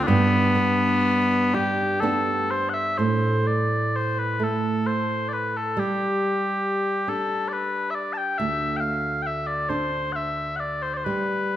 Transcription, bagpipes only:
0.03 1.54 B3 medium
0.03 0.07 D4 medium
1.54 2.00 G4 medium
2.00 2.51 A4 medium
2.51 2.69 C5 medium
2.69 2.74 F#5 medium
2.74 2.98 E5 medium
2.98 3.47 C5 medium
3.47 3.96 D5 medium
3.96 4.19 C5 medium
4.19 4.44 B4 medium
4.44 4.87 A4 medium
4.87 5.28 C5 medium
5.28 5.33 D5 medium
5.33 5.57 B4 medium
5.57 5.79 A4 medium
5.79 7.09 G4 medium
7.09 7.48 A4 medium
7.48 7.53 D5 medium
7.53 7.90 B4 medium
7.90 7.95 E5 medium
7.95 8.13 D5 medium
8.13 8.18 A5 medium
8.18 8.38 G5 medium
8.38 8.77 E5 medium
8.77 9.23 F5 medium
8.77 8.80 G5 medium
9.23 9.47 E5 medium
9.23 9.26 G5 medium
9.47 9.69 D5 medium
9.69 10.12 C5 medium
10.12 10.56 E5 medium
10.12 10.16 F#5 medium
10.56 10.82 D5 medium
10.56 10.60 F#5 medium
10.82 10.94 C5 medium
10.94 11.04 C5 soft
10.94 10.97 D5 soft
11.04 11.57 B4 medium

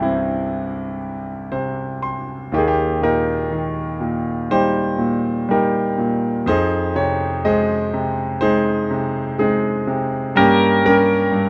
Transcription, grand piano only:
0.00 2.47 C2 medium
0.00 0.97 G2 soft
0.00 1.48 C3 soft
0.00 1.98 E3 soft
0.00 0.02 E4 soft
0.00 1.48 E4 medium
0.00 2.54 G4 medium
0.00 2.53 G#4 medium
0.00 1.52 C5 medium
0.05 1.49 C4 medium
1.52 2.49 C3 soft
1.52 1.98 C5 medium
2.03 2.48 C6 medium
2.52 6.42 D#2 medium
2.52 4.46 A#3 soft
2.52 3.02 D#4 soft
2.52 2.60 G4 medium
2.58 2.65 G#4 medium
2.68 3.01 G4 medium
3.02 3.99 A#2 soft
3.02 4.50 D#4 soft
3.02 4.50 G4 soft
3.02 4.55 A#4 medium
3.51 5.44 D#3 soft
4.00 4.97 A#2 soft
4.51 5.47 G3 soft
4.51 5.50 D#4 medium
4.51 5.49 G4 medium
4.51 5.52 C5 medium
4.98 5.97 A#2 soft
5.49 6.44 G3 soft
5.49 6.44 D#4 soft
5.49 6.44 G4 soft
5.49 6.51 A#4 medium
5.98 6.45 A#2 soft
6.46 10.32 F2 medium
6.46 8.39 D#4 medium
6.46 7.44 G#4 medium
6.46 6.92 C5 medium
6.96 7.92 C3 soft
6.96 7.46 C#5 medium
7.45 8.41 G#3 medium
7.45 8.41 G#4 medium
7.45 8.39 C5 medium
7.45 8.45 D#5 medium
7.94 8.89 C3 soft
8.41 9.37 G#3 soft
8.41 9.39 D#4 medium
8.41 9.38 G#4 medium
8.41 9.35 C5 medium
8.91 9.86 C3 soft
9.38 10.33 G#3 medium
9.38 10.32 C4 soft
9.38 10.32 D#4 soft
9.38 10.08 G#4 medium
9.87 10.34 C3 medium
10.35 11.30 G2 medium
10.35 11.49 A#3 medium
10.35 10.86 C#4 medium
10.35 10.86 G4 medium
10.83 11.49 G3 soft
10.83 11.49 A#4 medium
10.87 11.49 C#4 medium
10.87 11.49 G4 medium
11.32 11.49 G2 medium

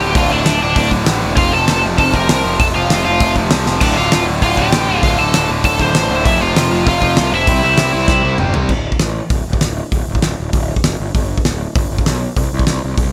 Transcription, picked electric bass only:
0.02 0.15 D1 medium
0.15 0.29 D1 loud
0.32 0.45 D1 medium
0.47 0.60 D1 loud
0.62 0.75 D1 medium
0.76 0.90 D1 medium
0.91 1.05 D1 medium
1.08 1.21 A1 loud
1.24 1.37 E1 medium
1.37 1.51 F1 loud
1.55 1.68 F1 medium
1.69 1.82 F1 loud
1.85 1.97 F1 medium
1.99 2.12 F1 medium
2.14 2.27 F1 medium
2.29 2.43 C2 loud
2.45 2.58 F1 medium
2.60 2.73 F1 loud
2.76 2.89 F1 loud
2.92 3.04 F1 medium
3.07 3.20 F1 medium
3.21 3.34 F1 medium
3.36 3.49 F1 medium
3.52 3.65 C2 loud
3.67 3.80 F1 medium
3.82 3.95 D1 loud
3.97 4.10 D1 loud
4.13 4.26 D1 medium
4.28 4.41 D1 loud
4.43 4.56 D1 medium
4.58 4.71 D1 loud
4.73 4.87 A1 medium
4.89 5.02 D1 medium
5.03 5.17 D1 loud
5.19 5.32 D1 loud
5.35 5.48 D1 loud
5.49 5.63 D1 medium
5.64 5.78 D1 medium
5.80 5.93 D1 medium
5.95 6.08 A1 medium
6.10 6.26 D1 medium
6.26 6.39 F1 loud
6.42 6.55 F1 loud
6.56 6.70 F1 medium
6.71 6.85 F1 medium
6.87 7.00 F1 medium
7.02 7.15 F1 medium
7.18 7.31 C2 loud
7.32 7.49 F1 medium
7.47 7.61 C2 loud
7.64 7.77 C2 medium
7.78 7.92 C2 medium
7.94 8.07 C2 loud
8.08 8.22 C2 medium
8.24 8.38 C2 medium
8.40 8.53 G1 medium
8.55 8.71 C2 medium
8.69 8.88 D1 medium
9.01 9.20 A1 medium
9.31 9.40 D1 medium
9.48 9.57 D1 medium
9.62 9.81 D1 medium
9.92 10.02 D1 medium
10.08 10.17 D1 medium
10.24 10.33 D1 medium
10.40 10.49 D1 medium
10.53 10.72 D1 medium
10.86 10.95 F#1 medium
11.00 11.09 G1 medium
11.15 11.33 G1 loud
11.46 11.65 D1 medium
11.76 11.85 G1 medium
11.91 12.01 G1 medium
12.07 12.25 B1 medium
12.37 12.46 C2 medium
12.53 12.62 C2 medium
12.69 12.78 C2 medium
12.84 12.93 C2 medium
12.98 13.12 C2 medium

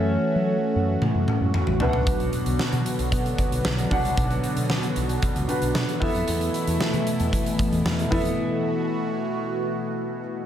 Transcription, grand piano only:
0.00 1.76 C#4 medium
0.00 1.76 F#4 medium
0.00 1.77 A4 medium
0.00 1.77 E5 medium
1.80 2.56 B2 medium
1.80 3.87 D4 medium
1.80 3.87 F#4 medium
1.80 3.88 B4 medium
1.80 1.88 E5 medium
1.89 3.91 F#5 medium
3.90 4.66 B2 medium
3.90 5.45 D4 medium
3.90 5.46 F#4 medium
3.90 5.46 B4 medium
3.90 5.47 F#5 medium
5.48 6.01 D4 medium
5.48 6.01 F#4 soft
5.48 6.02 B4 medium
5.48 6.02 F#5 medium
6.00 6.77 E3 medium
6.00 8.07 B3 medium
6.00 8.08 E4 medium
6.00 8.08 A4 medium
6.00 8.09 E5 medium
8.11 8.87 E3 medium
8.11 10.18 B3 medium
8.11 10.18 E4 medium
8.11 10.19 A4 medium
8.11 10.19 E5 medium

